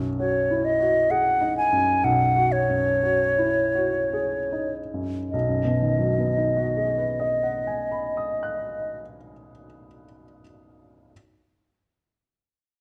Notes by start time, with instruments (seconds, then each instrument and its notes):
Already playing: grand piano B1 F#2 F#4
0.19 grand piano F#4, flute C#5
0.51 grand piano E4
0.65 flute D#5
0.80 grand piano F#4
1.11 grand piano G#4, flute F#5
1.41 grand piano D#4
1.57 flute G#5
1.72 grand piano F#2
2.04 grand piano B1, flute F#5
2.36 grand piano F#4
2.52 flute C#5
2.69 grand piano F#2
3.03 grand piano F#4
3.38 grand piano E4
3.75 grand piano F#4
4.13 grand piano G#4
4.52 grand piano D#4
4.94 grand piano F#2
5.31 grand piano B1, flute D#5
5.49 grand piano F#2
5.65 grand piano B2
5.82 grand piano D#3
5.99 grand piano F#3
6.18 grand piano B3
6.37 grand piano D#4
6.57 grand piano F#4
6.77 grand piano G#4
6.98 grand piano B4
7.20 grand piano D#5
7.43 grand piano F#5
7.67 grand piano G#5
7.92 grand piano B5
8.17 grand piano D#6
8.43 grand piano F#6